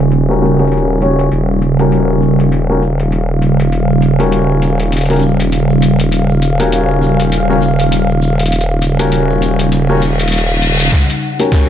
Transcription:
0.00 1.29 D#1 medium
0.00 10.88 C#3 medium
0.00 10.88 G3 medium
0.00 0.25 C#4 medium
0.00 0.25 F#4 medium
0.00 0.25 G4 medium
0.00 0.25 A#4 loud
0.00 1.28 F#5 medium
0.12 closed hi-hat medium
0.29 0.39 C#4 medium
0.29 0.39 F#4 medium
0.29 0.39 G4 medium
0.29 0.39 A#4 medium
0.42 0.55 C#4 medium
0.42 0.55 F#4 medium
0.42 0.55 G4 medium
0.42 0.55 A#4 loud
0.59 0.99 C#4 medium
0.59 0.99 F#4 medium
0.59 0.99 G4 medium
0.59 0.99 A#4 medium
0.59 closed hi-hat soft
0.68 closed hi-hat soft
0.72 closed hi-hat medium
0.78 closed hi-hat soft
1.02 1.25 C#4 medium
1.02 1.25 F#4 medium
1.02 1.25 G4 medium
1.02 1.25 C#5 medium
1.02 closed hi-hat soft
1.19 closed hi-hat medium
1.32 10.89 D#1 medium
1.32 10.88 F5 medium
1.32 closed hi-hat medium
1.32 shaker soft
1.50 shaker soft
1.62 closed hi-hat soft
1.62 shaker medium
1.79 2.65 C#4 medium
1.79 2.65 F#4 medium
1.79 2.65 G4 medium
1.79 2.65 A#4 loud
1.79 closed hi-hat soft
1.79 shaker soft
1.92 closed hi-hat medium
1.92 shaker medium
2.09 shaker soft
2.22 shaker medium
2.39 closed hi-hat soft
2.39 shaker soft
2.52 closed hi-hat medium
2.52 shaker soft
2.69 2.81 C#4 medium
2.69 2.81 F#4 medium
2.69 2.81 G4 medium
2.69 2.81 A#4 medium
2.69 shaker soft
2.82 shaker loud
2.99 closed hi-hat medium
2.99 shaker soft
3.12 closed hi-hat medium
3.12 shaker medium
3.29 shaker soft
3.42 closed hi-hat soft
3.42 shaker medium
3.60 closed hi-hat medium
3.60 shaker soft
3.72 closed hi-hat medium
3.72 shaker soft
3.89 shaker soft
4.01 closed hi-hat soft
4.01 shaker medium
4.19 5.05 C#4 medium
4.19 5.05 F#4 medium
4.19 5.05 G4 medium
4.19 5.05 A#4 loud
4.19 closed hi-hat soft
4.19 shaker soft
4.32 closed hi-hat medium
4.32 shaker medium
4.50 shaker soft
4.62 closed hi-hat soft
4.62 shaker medium
4.79 closed hi-hat soft
4.79 shaker soft
4.92 closed hi-hat medium
4.92 shaker soft
4.97 closed hi-hat soft
5.01 closed hi-hat soft
5.06 5.21 C#4 medium
5.06 5.21 F#4 medium
5.06 closed hi-hat soft
5.10 5.21 G4 medium
5.10 5.21 A#4 medium
5.10 closed hi-hat soft
5.10 shaker soft
5.13 closed hi-hat soft
5.16 closed hi-hat soft
5.19 closed hi-hat soft
5.19 shaker medium
5.39 closed hi-hat medium
5.39 shaker soft
5.52 closed hi-hat medium
5.52 shaker medium
5.69 shaker soft
5.82 closed hi-hat soft
5.82 shaker medium
6.00 closed hi-hat medium
6.00 shaker soft
6.12 closed hi-hat medium
6.12 shaker soft
6.29 shaker soft
6.42 closed hi-hat soft
6.42 shaker medium
6.59 7.45 C#4 medium
6.59 7.45 F#4 medium
6.59 7.45 G4 medium
6.59 7.45 A#4 loud
6.59 closed hi-hat medium
6.59 shaker soft
6.72 closed hi-hat medium
6.72 shaker soft
6.89 shaker soft
7.02 shaker medium
7.20 closed hi-hat medium
7.20 shaker soft
7.32 closed hi-hat medium
7.32 shaker soft
7.49 7.61 C#4 medium
7.49 7.61 F#4 medium
7.49 7.61 G4 medium
7.49 7.61 A#4 medium
7.49 shaker soft
7.62 shaker medium
7.80 closed hi-hat soft
7.80 shaker soft
7.92 closed hi-hat medium
7.92 shaker soft
8.10 shaker soft
8.22 shaker medium
8.39 closed hi-hat medium
8.39 shaker soft
8.46 closed hi-hat soft
8.52 closed hi-hat medium
8.52 shaker soft
8.61 closed hi-hat soft
8.70 shaker soft
8.82 closed hi-hat soft
8.82 shaker medium
8.99 9.85 C#4 medium
8.99 9.85 F#4 medium
8.99 9.85 G4 medium
8.99 9.85 A#4 loud
8.99 closed hi-hat medium
8.99 shaker soft
9.12 closed hi-hat medium
9.12 shaker soft
9.30 shaker soft
9.42 closed hi-hat soft
9.42 shaker medium
9.59 closed hi-hat medium
9.59 shaker soft
9.72 closed hi-hat medium
9.72 reverse cymbal medium
9.72 shaker medium
9.89 10.01 C#4 medium
9.89 10.01 F#4 medium
9.89 10.01 G4 medium
9.89 10.01 A#4 medium
9.89 shaker soft
10.02 closed hi-hat soft
10.02 shaker medium
10.20 closed hi-hat medium
10.20 shaker soft
10.28 closed hi-hat soft
10.32 closed hi-hat medium
10.32 shaker soft
10.38 closed hi-hat soft
10.50 shaker soft
10.62 closed hi-hat soft
10.62 shaker medium
10.79 closed hi-hat medium
10.79 shaker soft
10.91 11.69 C#3 medium
10.91 11.69 G3 medium
10.91 11.69 D#4 medium
10.91 11.69 F#5 medium
10.91 kick medium
10.91 snare soft
10.91 closed hi-hat medium
10.91 riser medium
10.91 shaker medium
11.10 closed hi-hat medium
11.10 shaker soft
11.21 shaker medium
11.39 11.69 C#4 medium
11.39 11.69 F#4 medium
11.39 11.69 G4 medium
11.39 11.69 A#4 loud
11.39 closed hi-hat soft
11.39 shaker soft
11.52 kick medium
11.52 snare soft
11.52 closed hi-hat medium
11.52 shaker soft

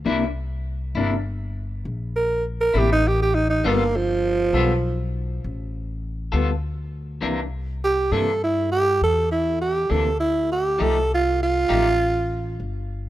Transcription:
0.05 0.93 C2 medium
0.05 0.24 C3 medium
0.05 0.24 A#3 medium
0.05 0.24 D4 medium
0.05 0.24 E4 loud
0.95 1.82 G1 medium
0.95 1.15 C3 medium
0.95 1.14 A#3 medium
0.95 1.14 D4 medium
0.95 1.14 E4 medium
1.85 2.72 A#1 medium
2.16 2.44 A#4 medium
2.61 2.79 A#4 medium
2.74 3.62 A1 medium
2.74 2.93 C3 medium
2.74 2.93 A#3 medium
2.74 2.93 D4 medium
2.74 2.92 E4 medium
2.74 2.90 G4 medium
2.92 3.09 D#4 medium
3.07 3.20 G4 medium
3.22 3.36 G4 medium
3.35 3.48 D#4 medium
3.50 3.69 D#4 medium
3.64 4.51 G1 medium
3.64 3.82 G3 medium
3.64 3.98 A#3 medium
3.64 3.82 B3 medium
3.64 3.83 F4 medium
3.64 3.83 A4 medium
3.96 5.11 F3 loud
4.53 5.40 B1 medium
4.53 4.72 G3 medium
4.53 4.72 B3 medium
4.53 4.72 F4 medium
4.53 4.72 A4 medium
5.44 6.30 A1 medium
6.32 7.20 D2 medium
6.32 6.51 G3 medium
6.32 6.51 B3 medium
6.32 6.50 F4 medium
6.32 6.50 A4 medium
7.21 8.09 C2 medium
7.21 7.39 C3 medium
7.21 7.40 E3 medium
7.21 7.40 A#3 medium
7.21 7.40 D4 medium
7.84 8.14 G4 medium
8.12 8.98 G2 medium
8.12 8.30 C3 medium
8.12 8.30 E3 medium
8.12 8.30 A#3 medium
8.12 8.29 D4 medium
8.12 8.41 A4 medium
8.44 8.71 E4 medium
8.72 9.00 G4 loud
9.02 9.88 E2 medium
9.02 9.31 A4 medium
9.31 9.60 E4 medium
9.61 9.92 G4 medium
9.90 10.77 D2 medium
9.90 10.09 C3 soft
9.90 10.08 E3 medium
9.90 10.08 A#3 medium
9.90 10.08 D4 medium
9.90 10.19 A4 medium
10.20 10.49 E4 medium
10.52 10.84 G4 medium
10.79 11.67 C2 medium
10.79 10.97 F3 medium
10.79 10.97 A3 medium
10.79 10.98 D#4 medium
10.79 10.98 G4 medium
10.79 11.10 A4 medium
11.14 11.41 F4 medium
11.43 12.57 F4 loud
11.69 12.56 A1 medium
11.69 11.88 F3 medium
11.69 11.87 A3 medium
11.69 11.87 D#4 medium
11.69 11.87 G4 medium
12.60 13.09 G1 medium

